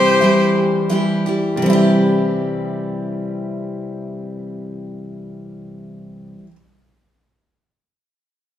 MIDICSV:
0, 0, Header, 1, 5, 480
1, 0, Start_track
1, 0, Key_signature, 0, "major"
1, 0, Tempo, 699301
1, 1111, Time_signature, 3, 2, 24, 8
1, 1111, Tempo, 744417
1, 5603, End_track
2, 0, Start_track
2, 0, Title_t, "Viola"
2, 0, Program_c, 0, 41
2, 0, Note_on_c, 0, 72, 113
2, 616, Note_off_c, 0, 72, 0
2, 5603, End_track
3, 0, Start_track
3, 0, Title_t, "Harmonica"
3, 0, Program_c, 1, 22
3, 0, Note_on_c, 1, 67, 99
3, 618, Note_off_c, 1, 67, 0
3, 5603, End_track
4, 0, Start_track
4, 0, Title_t, "Upright piano"
4, 0, Program_c, 2, 0
4, 0, Note_on_c, 2, 52, 87
4, 0, Note_on_c, 2, 60, 67
4, 141, Note_on_c, 2, 64, 67
4, 377, Note_on_c, 2, 67, 67
4, 607, Note_off_c, 2, 64, 0
4, 618, Note_on_c, 2, 64, 67
4, 850, Note_off_c, 2, 67, 0
4, 861, Note_on_c, 2, 67, 70
4, 1071, Note_on_c, 2, 55, 84
4, 1112, Note_off_c, 2, 52, 0
4, 1113, Note_off_c, 2, 60, 0
4, 1123, Note_on_c, 2, 60, 82
4, 1151, Note_off_c, 2, 64, 0
4, 1160, Note_off_c, 2, 67, 0
4, 1161, Note_on_c, 2, 64, 86
4, 1198, Note_on_c, 2, 67, 98
4, 4154, Note_off_c, 2, 55, 0
4, 4203, Note_off_c, 2, 60, 0
4, 4241, Note_off_c, 2, 64, 0
4, 4278, Note_off_c, 2, 67, 0
4, 5603, End_track
5, 0, Start_track
5, 0, Title_t, "Steel-string acoustic guitar"
5, 0, Program_c, 3, 25
5, 0, Note_on_c, 3, 48, 88
5, 0, Note_on_c, 3, 52, 90
5, 0, Note_on_c, 3, 55, 81
5, 0, Note_on_c, 3, 64, 89
5, 0, Note_on_c, 3, 67, 94
5, 137, Note_off_c, 3, 52, 0
5, 143, Note_off_c, 3, 55, 0
5, 145, Note_on_c, 3, 52, 71
5, 148, Note_off_c, 3, 48, 0
5, 151, Note_on_c, 3, 55, 70
5, 153, Note_off_c, 3, 64, 0
5, 154, Note_off_c, 3, 67, 0
5, 163, Note_on_c, 3, 64, 72
5, 165, Note_on_c, 3, 67, 75
5, 606, Note_off_c, 3, 52, 0
5, 609, Note_off_c, 3, 55, 0
5, 614, Note_on_c, 3, 52, 70
5, 617, Note_off_c, 3, 64, 0
5, 617, Note_on_c, 3, 55, 69
5, 625, Note_off_c, 3, 67, 0
5, 625, Note_on_c, 3, 64, 73
5, 633, Note_on_c, 3, 67, 84
5, 857, Note_off_c, 3, 67, 0
5, 859, Note_off_c, 3, 52, 0
5, 861, Note_off_c, 3, 55, 0
5, 865, Note_off_c, 3, 64, 0
5, 865, Note_on_c, 3, 67, 64
5, 872, Note_on_c, 3, 64, 55
5, 882, Note_on_c, 3, 55, 51
5, 1080, Note_on_c, 3, 48, 83
5, 1113, Note_on_c, 3, 52, 94
5, 1114, Note_off_c, 3, 67, 0
5, 1117, Note_off_c, 3, 64, 0
5, 1122, Note_off_c, 3, 55, 0
5, 1138, Note_on_c, 3, 55, 99
5, 1162, Note_on_c, 3, 64, 99
5, 1183, Note_on_c, 3, 67, 97
5, 4162, Note_off_c, 3, 48, 0
5, 4194, Note_off_c, 3, 52, 0
5, 4218, Note_off_c, 3, 55, 0
5, 4242, Note_off_c, 3, 64, 0
5, 4263, Note_off_c, 3, 67, 0
5, 5603, End_track
0, 0, End_of_file